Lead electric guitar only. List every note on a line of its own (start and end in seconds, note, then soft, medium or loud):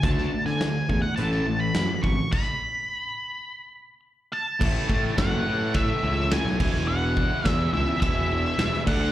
0.04 0.46 A5 medium
0.46 1.00 G#5 medium
1.02 1.15 F#5 medium
1.16 1.61 A5 medium
1.60 2.03 B5 medium
2.03 2.30 C#6 loud
2.32 4.00 B5 medium
4.33 5.18 A5 medium
5.18 5.77 F#5 medium
5.75 6.34 E5 medium
6.33 6.88 G#5 medium
6.88 7.47 F#5 medium
7.47 7.70 E5 medium
7.74 7.99 E5 medium
8.00 8.83 E5 medium
8.87 9.12 F#5 medium